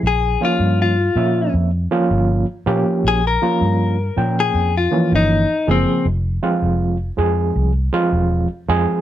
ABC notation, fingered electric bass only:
X:1
M:4/4
L:1/16
Q:1/4=80
K:Bbdor
V:1 name="Fingered electric bass" clef=bass
B,,,2 z G,,3 B,,2 F,,2 z G,,,2 z B,, z | B,,,2 z G,,3 B,,2 F,,2 z G,,,2 z _G,,, z | F,,,2 z F,,,3 F,,2 C,,2 z =E,,,2 z F,, z |]